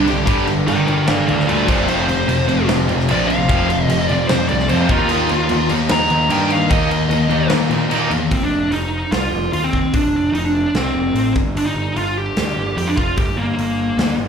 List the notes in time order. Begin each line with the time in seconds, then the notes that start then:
Already playing: C2
0.07 G2 D3 G3 G4, crash
0.26 G1 G2 D3 G3, kick, crash
0.45 G2 D3, crash
0.66 G1 G2 D3 A#4 G5, crash
0.86 G1 G2 D3 G3 A#4 G5, crash
1.07 G1 G2 D3 D5 F5, snare, crash
1.28 D2 G2 D3 D5 F5, crash
1.39 snare
1.47 D2 G2 D3 G3 F4 D5, crash
1.67 F1 F2 C3 F3 F4 D5, kick, crash
1.86 F1 F2 C3 F3 C5, crash
2.07 F1 F2 C3, crash
2.27 F1 F2 C3, crash
2.47 F1 F2 C3 F3, crash
2.67 F1 F2 C3, snare, crash
2.88 F1 F2 C3, crash
3.00 snare
3.08 A#1 F2 C3 F3 D5, crash
3.27 F2 C3 F3 F5, crash
3.49 F1 F2 C3 F3, kick, crash
3.69 F2 C3, crash
3.84 D#5
3.89 F1 F2 C3, crash
4.07 F1 F2 F3 D5, crash
4.12 C3
4.28 F1 F2 C3 C5, snare, crash
4.49 C2 F2 C3 D5, crash
4.59 snare
4.69 F2 C3 F3 C5, crash
4.89 D#2 D#3 A#3 D#4 F4, kick, crash
5.09 D#2 D#3 A#3 D#4, crash
5.29 D#2 D#3 A#3, crash
5.49 D#2 D#3 A#3, crash
5.69 D#2 D#3 A#3 D#4, crash
5.89 D#2 D#3 A#3 A#5, snare, crash
6.09 D#2 D#3 A#3, crash
6.29 G2 D#3 A#3 D#4 G5, crash
6.49 D#3 A#3 D#4 F5, crash
6.69 D#2 D#3 A#3 D#4 D#5, kick, crash
6.89 D#3 A#3, crash
7.09 D#2 D#3 A#3, crash
7.29 D#2 D#3 A#3 D#4, crash
7.33 D#3
7.50 D#2 D#3 A#3, snare, crash
7.70 A#2 D#3 A#3, crash
7.89 A#2 D#3 A#3 D#4, crash
8.09 E2 D#3 A#3, crash
8.13 D#3 A#3
8.31 F1 C4, kick, open hi-hat
8.43 D4
8.50 F1
8.70 F1 D#4, open hi-hat
9.12 C2 F4, snare, open hi-hat
9.32 F1
9.52 D#2 F4, open hi-hat
9.64 C4
9.73 D#2, kick
9.93 F1 D4, kick, open hi-hat
10.13 F1
10.32 F1 D#4, open hi-hat
10.45 D4
10.74 C2 C4, snare, open hi-hat
10.95 F1
11.13 A1, open hi-hat
11.36 G1, kick
11.56 G1 D4, open hi-hat
11.66 D#4
11.75 G1
11.96 G1 F4, open hi-hat
12.18 G4
12.37 D2, snare, open hi-hat
12.57 G1
12.76 F2 G4, open hi-hat
12.87 D4
12.97 F1 F4, kick
13.17 G1 G4, kick, open hi-hat
13.37 G1 A#3
13.58 G1, open hi-hat
13.97 D2, snare, open hi-hat
14.18 G1